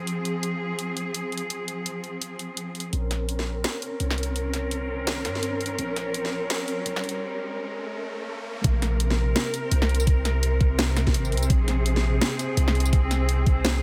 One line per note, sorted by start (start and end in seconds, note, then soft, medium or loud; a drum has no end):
0.00 2.89 F3 medium
0.00 2.89 C4 medium
0.00 2.89 G#4 medium
0.07 closed hi-hat medium
0.25 closed hi-hat medium
0.43 closed hi-hat medium
0.79 closed hi-hat medium
0.97 closed hi-hat medium
1.14 closed hi-hat medium
1.32 closed hi-hat soft
1.38 closed hi-hat medium
1.50 closed hi-hat medium
1.68 closed hi-hat medium
1.86 closed hi-hat medium
2.04 closed hi-hat soft
2.22 closed hi-hat medium
2.39 closed hi-hat medium
2.57 closed hi-hat medium
2.75 closed hi-hat soft
2.80 closed hi-hat medium
2.93 3.63 A#1 loud
2.93 8.60 C4 medium
2.93 8.60 C#4 medium
2.93 8.60 A#4 medium
2.93 closed hi-hat medium
2.93 riser medium
3.11 snare soft
3.11 closed hi-hat medium
3.29 closed hi-hat medium
3.39 snare soft
3.64 snare loud
3.64 closed hi-hat medium
3.82 closed hi-hat medium
4.00 5.27 C2 medium
4.00 closed hi-hat medium
4.11 snare medium
4.18 closed hi-hat soft
4.23 closed hi-hat medium
4.36 closed hi-hat medium
4.54 snare soft
4.54 closed hi-hat medium
4.71 closed hi-hat medium
5.07 snare loud
5.07 closed hi-hat medium
5.25 5.78 G2 medium
5.25 snare medium
5.25 closed hi-hat medium
5.35 snare soft
5.43 closed hi-hat medium
5.61 closed hi-hat soft
5.66 closed hi-hat medium
5.79 6.49 A#1 loud
5.79 closed hi-hat medium
5.96 snare soft
5.96 closed hi-hat medium
6.14 closed hi-hat medium
6.25 snare soft
6.50 snare loud
6.50 closed hi-hat medium
6.68 closed hi-hat medium
6.86 7.21 C2 medium
6.86 closed hi-hat medium
6.96 snare medium
7.04 closed hi-hat soft
7.09 closed hi-hat medium
8.64 9.35 A#1 loud
8.64 13.82 C3 medium
8.64 13.82 C4 medium
8.64 11.47 A#4 medium
8.64 13.82 C5 medium
8.64 kick loud
8.64 closed hi-hat medium
8.82 snare soft
8.82 closed hi-hat medium
9.00 closed hi-hat medium
9.10 snare soft
9.36 snare loud
9.36 closed hi-hat medium
9.54 closed hi-hat medium
9.54 tambourine soft
9.71 11.16 C2 medium
9.71 closed hi-hat medium
9.82 snare medium
9.89 closed hi-hat soft
9.95 closed hi-hat medium
10.00 tambourine medium
10.07 kick loud
10.07 closed hi-hat medium
10.25 snare soft
10.25 closed hi-hat medium
10.25 tambourine soft
10.43 closed hi-hat medium
10.61 kick loud
10.61 closed hi-hat soft
10.79 snare loud
10.79 closed hi-hat medium
10.97 snare medium
10.97 closed hi-hat medium
10.97 tambourine soft
11.07 kick medium
11.07 snare soft
11.14 11.34 G#1 medium
11.14 closed hi-hat medium
11.25 tambourine soft
11.32 11.49 C2 medium
11.32 closed hi-hat soft
11.37 closed hi-hat medium
11.43 tambourine medium
11.50 12.20 A#1 loud
11.50 13.82 G#4 medium
11.50 kick loud
11.50 closed hi-hat medium
11.68 snare soft
11.68 closed hi-hat medium
11.86 closed hi-hat medium
11.96 snare soft
12.21 snare loud
12.21 closed hi-hat medium
12.39 closed hi-hat medium
12.39 tambourine soft
12.57 13.82 C2 medium
12.57 closed hi-hat medium
12.68 snare medium
12.75 closed hi-hat soft
12.80 closed hi-hat medium
12.85 tambourine medium
12.93 kick loud
12.93 closed hi-hat medium
13.11 snare soft
13.11 closed hi-hat medium
13.11 tambourine soft
13.29 closed hi-hat medium
13.46 kick loud
13.46 closed hi-hat soft
13.65 snare loud
13.65 closed hi-hat medium